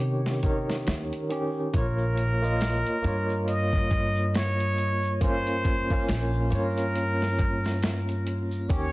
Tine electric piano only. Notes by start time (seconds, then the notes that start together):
Already playing: D#3 C#4 G4 C#5
0.43 D#3 A#4 C#5
1.30 D#3 C#4 G4
1.73 A#3 F4 C#5
2.42 A#3 F4 D#5
3.02 A#3 F4
3.07 C#5
5.21 A#3 C#4 F4
5.91 A#3 C#4 F4
6.50 A#3 F4
6.55 C#5
8.69 D#3 C#4 G4